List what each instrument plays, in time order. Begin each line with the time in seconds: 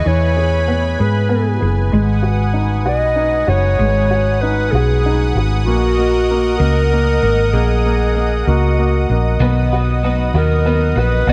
Already playing: upright piano B3 E4 G#4, analog synth pad E4 B4 G#5
0.06 fingered electric bass E2, upright piano E3, clarinet C#5, analog synth pad B5
0.37 upright piano G#4
0.68 upright piano B3
0.99 fingered electric bass G#2, upright piano G#4, clarinet B4
1.29 upright piano B3
1.61 fingered electric bass F#1, upright piano G#4
1.92 fingered electric bass G#1, upright piano G#3, analog synth pad F#5 D#6
2.23 upright piano F#4
2.54 upright piano D#4
2.86 fingered electric bass B1, upright piano F#4, clarinet D#5
3.16 upright piano D#4
3.47 fingered electric bass F#1, upright piano F#4, clarinet C#5
3.79 fingered electric bass G#1, upright piano G#3
4.11 upright piano F#4
4.41 upright piano D#4, clarinet B4
4.72 fingered electric bass B1, upright piano F#4, clarinet G#4
5.06 upright piano D#4
5.35 fingered electric bass G#1, upright piano F#4
5.65 fingered electric bass A#1, upright piano A#3, clarinet F#4, analog synth pad A#4 D#5
5.98 upright piano A#3
6.31 upright piano A#3
6.58 fingered electric bass C#2, upright piano A#3, clarinet A#4
6.93 upright piano A#3
7.23 fingered electric bass G#1, upright piano A#3
7.53 fingered electric bass A#1, upright piano A#3, clarinet G#4
7.86 upright piano A#3
8.15 upright piano A#3
8.47 fingered electric bass C#2, upright piano A#3, clarinet F#4
8.79 upright piano A#3
9.10 fingered electric bass A#1, upright piano A#3
9.40 fingered electric bass B1, clean electric guitar B2 D#3 F#3 B3 D#4 B4, analog synth pad B3, upright piano B3
9.72 clean electric guitar F#3 B3 D#4 B4, upright piano F#4
10.03 clean electric guitar F#3 B3 D#4 B4, upright piano B3
10.34 fingered electric bass D#2, clean electric guitar B2 D#3 F#3 B3 D#4, upright piano F#4, clarinet A#4
10.65 clean electric guitar F#3 B3 D#4, upright piano B3
10.96 fingered electric bass A#1, clean electric guitar F#3 B3 D#4 B4, upright piano F#4, clarinet B4
11.27 fingered electric bass B1, clean electric guitar B2 D#3 F#3 B3 D#4 B4, upright piano B3, clarinet D#5, analog synth pad G#5